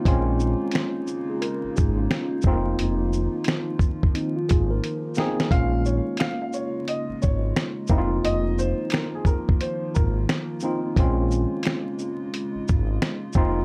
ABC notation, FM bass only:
X:1
M:4/4
L:1/16
Q:"Swing 16ths" 1/4=88
K:Bbm
V:1 name="FM bass" clef=bass
B,,,3 z6 A,,, A,,,2 z2 F,,,2 | F,,,3 z6 z A,,,2 z4 | B,,,3 z6 A,,, A,,,2 z2 F,,,2 | F,,,3 z6 z A,,,2 z4 |
B,,,3 z6 A,,, A,,,2 z2 F,,,2 |]